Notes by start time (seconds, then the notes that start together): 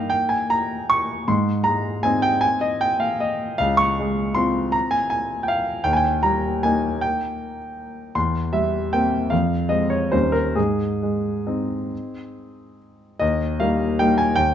Already playing: G2 A#3 D#4 D#5 F5 G5
0.10 G5
0.29 G#5
0.50 A#5
0.90 C#6
1.28 G#2 C6
1.64 G#3 A#5
2.03 C4 D#4 G#5
2.22 G5
2.41 G#5
2.61 D#5
2.81 G5
3.00 F5
3.20 D#5
3.58 C#2 F5
3.77 C#6
3.99 G#3
4.35 C4 F4 C6
4.72 A#5
4.91 G#5
5.10 G#5
5.43 G5
5.48 F5
5.84 D#2 G5
5.93 G5 G#5
6.23 G3 A#5
6.63 A#3 D#4 G#5
7.01 G5
8.15 E2 C6
8.53 G3 E5
8.93 A#3 C4 G5
9.30 F2 F5
9.69 G#3 C4 D#5
9.90 C#5
10.12 D#2 G3 C#4 D#4 C5
10.32 A#4
10.55 G#2 G#4
11.03 G#3
11.46 C4 D#4
13.20 D#2 D#5
13.60 G3 A#3 D#4 F5
13.99 G3 A#3 D#4 G5
14.18 G#5
14.36 D#2 G5